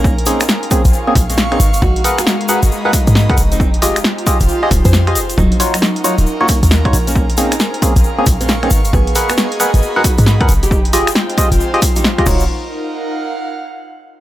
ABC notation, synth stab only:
X:1
M:4/4
L:1/16
Q:"Swing 16ths" 1/4=135
K:Ebm
V:1 name="Synth stab"
z2 [B,=CDA] z3 [B,CDA] z2 [B,CDA] z3 [B,CDA] z2 | z2 [ABcg] z3 [ABcg] z2 [ABcg] z3 [ABcg] z2 | z2 [F=GAe] z3 [FGAe] z2 [FGAe] z3 [FGAe] z2 | z2 [EFGd] z3 [EFGd] z2 [EFGd] z3 [EFGd] z2 |
z2 [B,=CDA] z3 [B,CDA] z2 [B,CDA] z3 [B,CDA] z2 | z2 [ABcg] z3 [ABcg] z2 [ABcg] z3 [ABcg] z2 | z2 [F=GAe] z3 [FGAe] z2 [FGAe] z3 [FGAe] [EF_Gd]2 | z16 |]